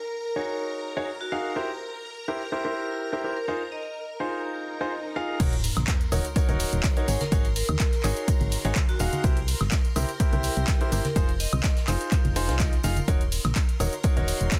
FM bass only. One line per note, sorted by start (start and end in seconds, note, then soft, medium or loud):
5.40 5.71 D#1 loud
5.77 5.85 A#1 loud
6.12 6.21 D#1 medium
6.49 6.65 D#1 loud
6.73 6.81 D#1 medium
7.08 7.17 G#1 loud
7.32 7.63 G#1 loud
7.69 7.77 D#2 loud
8.04 8.13 G#1 medium
8.41 8.57 G#1 loud
8.65 8.73 G#1 medium
9.00 9.09 D#1 loud
9.24 9.55 C2 loud
9.61 9.69 G1 loud
9.96 10.05 C2 medium
10.33 10.49 C2 loud
10.57 10.65 C2 loud
10.92 11.01 G1 loud
11.16 11.47 F1 loud
11.53 11.61 C2 loud
11.88 11.97 F1 medium
12.25 12.50 F1 loud
12.49 12.79 C2 loud
12.84 13.01 F1 loud
13.08 13.39 D#1 loud
13.45 13.53 A#1 loud
13.80 13.89 D#1 medium
14.17 14.33 D#1 loud
14.41 14.49 D#1 medium